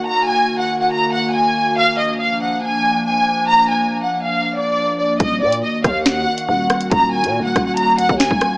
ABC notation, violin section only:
X:1
M:4/4
L:1/16
Q:1/4=140
K:Ebm
V:1 name="Violin section"
b2 a3 g2 g b2 g2 a4 | f2 e2 f2 g2 a4 a4 | b2 a3 g2 f3 =d4 d2 | e2 =d2 e2 f2 g4 g4 |
b2 a3 g2 g b2 g2 a4 |]